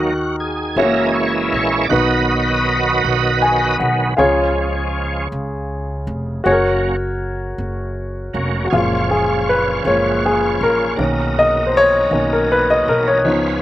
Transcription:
Already playing: upright bass D#2, tonewheel organ D#3 F#3 A#3, grand piano D#3 D#4 F#4 A#4
0.00 tonewheel organ F#4
0.40 tonewheel organ G#4
0.76 upright bass F#1, tonewheel organ E3 G#3 A#3 C#4 E4 A#4, grand piano G#3 C#4 E4 F#4 C#5
0.83 grand piano A#3
1.07 tonewheel organ D#5
1.15 tonewheel organ C#5
1.53 upright bass A#1, tonewheel organ C#5
1.84 tonewheel organ D5
1.88 upright bass B1, grand piano B2 D#4 F#4, tonewheel organ D#3 F#3 B3 F#4 B4 D#5
1.93 grand piano B4
3.05 upright bass B1
3.42 grand piano G#5
3.80 upright bass B1, grand piano F#5
4.17 upright bass C#2, grand piano C#3 F4 G#4 C#5, tonewheel organ F3 G#3 C#4
5.32 upright bass C#2
6.07 upright bass F1
6.44 upright bass F#1, tonewheel organ F#3 A#3 C#4, grand piano F#4 G#4 C#5
6.52 grand piano A#4
7.58 upright bass F#1
8.34 upright bass F1, tonewheel organ F#3 A#3 C#4
8.65 grand piano F#4
8.70 upright bass F#1, grand piano A#2 F3 G#3 F4, tonewheel organ F3 C#4 F4 G#4
8.78 tonewheel organ C#5
9.11 grand piano G#4
9.49 grand piano B4
9.84 upright bass F#1, grand piano F3 G#3 A#3 C#5
10.25 grand piano G#4
10.61 upright bass A#1, grand piano A#4
10.96 upright bass B1, tonewheel organ B2 F#3 D4 A#4, grand piano D#3 A#3 C#4
11.02 tonewheel organ D#4
11.39 grand piano D#5
11.67 grand piano C5
11.77 grand piano C#5
12.10 upright bass B1, grand piano D#3 A#3 C#4
12.33 grand piano A#4
12.52 grand piano B4
12.70 grand piano D#5
12.87 upright bass B1, grand piano A#4
13.08 grand piano C#5
13.24 upright bass C#2, grand piano F3 B3 D#4, tonewheel organ G#3 C#4 F4 B4

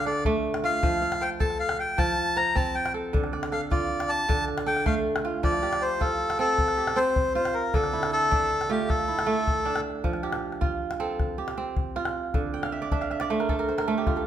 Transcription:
Already playing: kora D3 F4
0.06 kora A4, melodica D5, calabash click
0.25 kora A3, calabash thump
0.54 calabash click
0.64 kora F4, melodica F5
0.83 kora F3, calabash thump
1.02 kora F5
1.12 calabash click
1.21 kora C5, melodica G5
1.40 kora A4, melodica A5, calabash thump
1.50 calabash click
1.60 melodica F5
1.69 calabash click
1.79 melodica G5, calabash click
1.98 kora F3, melodica A5, calabash thump
2.36 kora C5, melodica A#5, calabash click
2.55 kora C4, melodica A5, calabash thump
2.75 melodica G5
2.86 calabash click
2.94 kora A4
3.13 kora D3, calabash thump, calabash click
3.24 calabash click
3.33 kora D5, calabash click
3.43 calabash click
3.52 kora A4, melodica F5, calabash click
3.71 kora F4, melodica D5, calabash thump, calabash click
4.00 calabash click
4.09 melodica A5, calabash click
4.29 kora D3, calabash thump
4.48 calabash click
4.58 calabash click
4.66 kora A4, melodica G5
4.77 calabash click
4.86 kora A3, melodica F5, calabash thump, calabash click
5.16 calabash click
5.25 kora F4, calabash click
5.43 kora F3, melodica D5, calabash thump, calabash click
5.53 calabash click
5.63 kora G4, calabash click
5.73 calabash click
5.81 melodica C5
6.00 kora F4, melodica A4, calabash thump
6.30 calabash click
6.39 kora C4 A4, melodica A4
6.58 calabash thump, calabash click
6.68 calabash click
6.77 kora G4
6.87 calabash click
6.96 kora C4, melodica C5
7.16 calabash thump
7.35 kora F4, melodica C5
7.45 calabash click
7.54 melodica A#4
7.74 kora D3, melodica A4, calabash thump, calabash click
7.84 calabash click
7.93 kora E4, calabash click
8.03 calabash click
8.12 melodica A4
8.23 calabash click
8.31 kora D4, calabash thump
8.61 calabash click
8.69 kora A3 F4, melodica G4
8.88 melodica A4, calabash thump, calabash click
8.99 calabash click
9.08 kora E4
9.19 calabash click
9.26 kora A3
9.47 calabash thump
9.65 kora D4, calabash click
9.76 calabash click
10.04 kora F3, calabash thump, calabash click
10.13 calabash click
10.23 kora G4, calabash click
10.33 calabash click
10.52 calabash click
10.61 kora F4, calabash thump
10.91 calabash click
11.00 kora C4 A4
11.20 calabash thump, calabash click
11.38 kora G4
11.48 calabash click
11.58 kora C4
11.77 calabash thump
11.96 kora F4, calabash click
12.05 calabash click
12.34 kora D3, calabash thump
12.54 kora G5
12.63 kora F5, calabash click
12.72 kora E5
12.82 kora D5
12.92 kora D4 E5, calabash thump
13.01 kora F5, calabash click
13.11 kora E5, calabash click
13.20 kora D5, calabash click
13.30 kora A3 C5, calabash click
13.40 kora A#4, calabash click
13.49 kora A4, calabash thump
13.59 kora A#4, calabash click
13.69 kora C5, calabash click
13.78 kora A#4, calabash click
13.88 kora A3 A4
13.98 kora G4
14.07 kora F4, calabash thump, calabash click
14.16 kora A4, calabash click

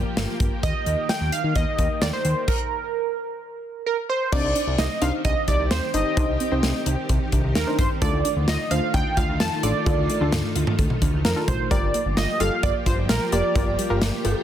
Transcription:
Already playing: string machine F3 A#3 G4
0.17 analog synth bass G1, snare, closed hi-hat
0.40 analog synth bass G1, kick, closed hi-hat
0.63 analog synth bass D#2, string machine D#3, analog polysynth D#5, kick, closed hi-hat
0.86 analog synth bass D#2, closed hi-hat
1.09 analog polysynth G5, snare, closed hi-hat
1.21 analog synth bass D#2
1.32 analog polysynth F5, closed hi-hat
1.44 analog synth bass D#3
1.55 analog synth bass D#2, analog polysynth D#5, kick, closed hi-hat
1.79 analog synth bass D#2, kick, closed hi-hat
2.02 analog synth bass D#2, analog polysynth D5, snare, closed hi-hat
2.13 analog polysynth C5
2.25 analog synth bass D#2, closed hi-hat
2.48 analog polysynth A#4, kick, crash
3.86 analog polysynth A#4
4.09 analog polysynth C5
4.32 analog synth bass C2, string machine D#3 C4 G4, synth arpeggio sound C4, synth pluck D4 D#4 C5, analog polysynth D5, kick, crash
4.44 analog synth bass C2
4.56 synth arpeggio sound D4, closed hi-hat
4.67 analog synth bass C2
4.78 analog synth bass C2, synth arpeggio sound D#4, analog polysynth D#5, snare, closed hi-hat
5.02 analog synth bass C2, synth arpeggio sound C4, synth pluck D4 D#4 C5, analog polysynth F5, closed hi-hat
5.25 analog synth bass C2, synth arpeggio sound D4, analog polysynth D#5, kick, closed hi-hat
5.48 analog synth bass C2, synth arpeggio sound D#4, analog polysynth D5, kick, closed hi-hat
5.59 analog synth bass C2
5.71 analog synth bass D#2, synth arpeggio sound C4, analog polysynth C5, snare, closed hi-hat
5.94 analog synth bass G1, synth pluck D4 D#4 C5, synth arpeggio sound D4, analog polysynth D#5, closed hi-hat
6.17 analog synth bass C2, synth pluck D4 D#4 C5, synth arpeggio sound D#4, kick, closed hi-hat
6.29 analog synth bass C2
6.40 synth arpeggio sound C4, closed hi-hat
6.52 analog synth bass C2, synth pluck C4 D#4 C5
6.63 analog synth bass C2, synth arpeggio sound D4, snare, closed hi-hat
6.86 analog synth bass C2, synth arpeggio sound D#4, closed hi-hat
7.09 analog synth bass C2, synth arpeggio sound C4, kick, closed hi-hat
7.32 analog synth bass C2, synth arpeggio sound D4, kick, closed hi-hat
7.44 analog synth bass C2
7.55 analog synth bass D#2, synth arpeggio sound D#4, analog polysynth A#4, snare, closed hi-hat
7.67 synth pluck D4 D#4 C5
7.79 analog synth bass G1, synth arpeggio sound C4, analog polysynth C5, kick, closed hi-hat
8.02 analog synth bass D2, string machine A3 F4, synth arpeggio sound A3, synth pluck D4 F4 A4, analog polysynth D5, kick, closed hi-hat
8.13 analog synth bass D2
8.25 synth arpeggio sound D4, closed hi-hat
8.36 analog synth bass D2
8.48 analog synth bass D2, synth arpeggio sound F4, analog polysynth D#5, snare, closed hi-hat
8.71 analog synth bass D2, synth arpeggio sound A3, synth pluck D4 F4 C5, analog polysynth F5, closed hi-hat
8.94 analog synth bass D2, synth arpeggio sound D4, analog polysynth G5, kick, closed hi-hat
9.17 analog synth bass D2, synth arpeggio sound F4, analog polysynth F5, kick, closed hi-hat
9.29 analog synth bass D2
9.40 analog synth bass F2, synth arpeggio sound A3, analog polysynth A5, snare, closed hi-hat
9.63 analog synth bass A1, synth arpeggio sound D4, synth pluck D4 F4 A4, analog polysynth D5, closed hi-hat
9.86 analog synth bass D2, synth pluck D4 F4 A4, synth arpeggio sound F4, kick, closed hi-hat
9.98 analog synth bass D2
10.09 synth arpeggio sound A3, closed hi-hat
10.21 analog synth bass D2, synth pluck D4 F4 A4
10.32 analog synth bass D2, synth arpeggio sound D4, snare, closed hi-hat, mid tom
10.56 analog synth bass D2, synth arpeggio sound F4, closed hi-hat
10.67 mid tom
10.79 analog synth bass D2, synth arpeggio sound A3, kick, closed hi-hat
10.90 mid tom
11.02 analog synth bass D2, synth arpeggio sound D4, kick, closed hi-hat
11.13 analog synth bass D2
11.25 analog synth bass F2, synth arpeggio sound F4, analog polysynth A#4, snare, closed hi-hat
11.36 synth pluck D4 F4 A4
11.48 analog synth bass A1, synth arpeggio sound A3, analog polysynth C5, kick, closed hi-hat, mid tom
11.71 analog synth bass G1, string machine F3 A#3 G4, synth arpeggio sound G3, synth pluck F4 G4 A#4, analog polysynth D5, kick, closed hi-hat
11.83 analog synth bass G1
11.94 synth arpeggio sound A#3, closed hi-hat
12.06 analog synth bass G1
12.17 analog synth bass G1, synth arpeggio sound F4, analog polysynth D#5, snare, closed hi-hat
12.40 analog synth bass G1, synth arpeggio sound G3, synth pluck F4 G4 A4, analog polysynth F5, closed hi-hat
12.63 analog synth bass G1, synth arpeggio sound A#3, analog polysynth D5, kick, closed hi-hat
12.86 analog synth bass G1, synth arpeggio sound F4, analog polysynth C5, kick, closed hi-hat
12.98 analog synth bass G1
13.09 analog synth bass A#1, synth arpeggio sound G3, analog polysynth A#4, snare, closed hi-hat
13.32 analog synth bass F1, synth arpeggio sound A#3, synth pluck F4 G4 A#4, analog polysynth D5, closed hi-hat
13.56 analog synth bass G1, synth arpeggio sound F4, synth pluck F4 G4 A#4, kick, closed hi-hat
13.67 analog synth bass G1
13.79 synth arpeggio sound G3, closed hi-hat
13.90 analog synth bass G1, synth pluck F4 G4 A#4
14.02 analog synth bass G1, synth arpeggio sound A#3, snare, closed hi-hat
14.25 analog synth bass G1, synth arpeggio sound F4, closed hi-hat, cowbell

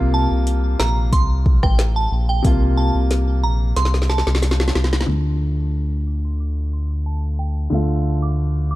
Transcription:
Already playing: analog synth bass C2, grand piano C3 A#3 F4
0.14 synth bell A5
0.31 analog synth bass C2
0.47 closed hi-hat
0.80 analog synth bass A#1, synth bell A#5, snare
1.13 analog synth bass C2, synth bell C6, kick, closed hi-hat
1.46 kick
1.63 analog synth bass A1, synth bell G5, kick, cross-stick
1.79 snare, closed hi-hat
1.96 synth bell A5
2.12 analog synth bass A#1
2.29 synth bell G5
2.42 analog synth bass C2, grand piano C3 A#3, kick, closed hi-hat
2.47 grand piano F4
2.77 synth bell A5
2.95 analog synth bass C2
3.11 snare, closed hi-hat
3.44 analog synth bass A#1, synth bell A#5
3.76 analog synth bass C2, synth bell C6, snare, closed hi-hat
3.85 snare
3.94 snare
4.02 snare
4.09 synth bell A5, snare
4.18 snare
4.27 analog synth bass C2, snare
4.35 snare
4.42 snare, closed hi-hat
4.51 snare
4.60 snare
4.68 snare
4.75 analog synth bass C2, snare
4.84 snare
4.93 snare
5.01 snare
5.06 analog synth bass D2, grand piano D3 A3, synth bell D6
5.11 grand piano F4
5.41 synth bell C6
5.59 synth bell D6
6.07 synth bell D6
6.25 synth bell C6
6.40 synth bell D6
6.73 synth bell C6
7.06 synth bell A5
7.39 synth bell G5
7.70 analog synth bass D2, grand piano D3 A3
7.74 grand piano F4
8.22 synth bell D6
8.71 synth bell D6

